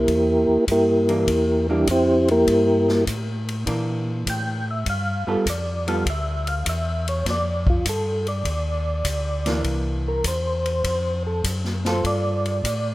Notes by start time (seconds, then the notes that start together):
Already playing: A#3 E4 G4 A#4
0.08 E2, kick, ride
0.48 E2
0.67 G2, kick, hi-hat pedal, ride
0.71 A#3 E4 G4 A#4
1.09 E3 A#3 D4, ride
1.27 E2, kick, ride
1.69 E3 G3 A#3 D4 E4 G4
1.87 F2 C4 C5, kick, hi-hat pedal, ride
1.91 E4 G4
2.28 A#3 E4 G4 A#4, ride
2.47 G2, kick, ride
2.89 snare
3.06 A2, kick, hi-hat pedal, ride
3.49 ride
3.66 A#2 E3 A#3 D4, kick, ride
4.26 A2 G5, kick, hi-hat pedal, ride
4.71 E5
4.86 G2 F5, kick, ride
5.27 G2 G3 B3 F4 A4
5.46 F2 D5, kick, hi-hat pedal, ride
5.87 G3 B3 F4 A4 F5, ride
6.06 D2, kick, ride
6.10 E5
6.47 F5, ride
6.66 E2 E5, kick, hi-hat pedal, ride
7.08 C#5, ride
7.25 F2, kick, snare, ride
7.30 D5
7.67 F4, kick
7.85 G2, kick, hi-hat pedal, ride
7.89 A4
8.27 D5, ride
8.45 D#2, kick, ride
9.04 D2, kick, hi-hat pedal, ride
9.46 E3 A#3 D4, snare, ride
9.64 C2, kick, ride
10.08 A#4
10.24 E2 C5, kick, hi-hat pedal, ride
10.66 ride
10.84 F2, kick, ride
11.27 A4
11.44 F#2, kick, hi-hat pedal, ride
11.65 snare
11.85 F4 A4 C5, snare, ride
12.04 G2 D5, kick, ride
12.46 ride
12.64 A2, kick, hi-hat pedal, ride